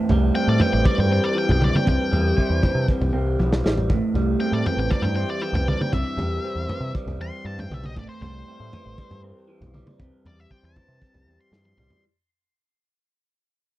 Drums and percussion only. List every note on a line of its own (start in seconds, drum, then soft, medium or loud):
0.09 floor tom medium
0.60 floor tom medium
0.85 kick loud
0.98 floor tom medium
1.49 floor tom medium
1.62 mid tom medium
1.75 mid tom medium
1.87 kick loud
1.87 floor tom medium
2.13 floor tom medium
2.38 kick medium
2.63 kick medium
2.63 floor tom medium
2.88 kick loud
3.02 floor tom medium
3.40 high tom medium
3.53 snare soft
3.66 snare medium
3.77 floor tom medium
3.90 kick loud
3.90 floor tom medium
4.15 floor tom medium
4.66 floor tom medium
4.91 kick loud
5.05 floor tom medium
5.55 floor tom medium
5.68 mid tom medium
5.81 mid tom medium
5.93 kick loud
5.93 floor tom medium
6.19 floor tom medium
6.69 floor tom medium
6.95 kick loud
7.08 floor tom medium
7.59 floor tom medium
7.71 mid tom medium
7.84 mid tom medium
7.97 kick loud
7.97 floor tom medium
8.22 floor tom medium
8.73 floor tom medium
8.98 kick medium
9.11 floor tom medium
9.62 floor tom medium
9.74 mid tom medium
9.87 mid tom medium
10.00 kick loud
10.00 floor tom medium
10.26 floor tom medium
10.51 kick medium
10.76 kick medium
10.76 floor tom medium
11.02 kick loud
11.14 floor tom medium
11.53 snare medium
11.65 high tom soft
11.78 mid tom medium
11.90 floor tom medium